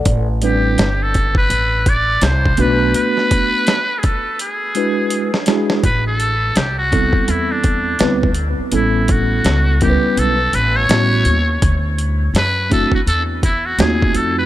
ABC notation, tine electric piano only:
X:1
M:4/4
L:1/16
Q:"Swing 16ths" 1/4=83
K:Ador
V:1 name="Tine electric piano"
[Ad] z [G,CDEB]2 z8 z2 [A,B,DFB]2- | [A,B,DFB]4 z6 [^G,DEFB]2 z2 [G,DEF^G]2 | z6 [G,B,CEA]6 [G,B,CEB]2 z2 | [G,B,^CEA]6 [G,B,CE_B=B]2 z4 [G,B,CEF]2 z2 |
z6 [A,CDEF]2 z4 [A,^B,^D=F^F]4 |]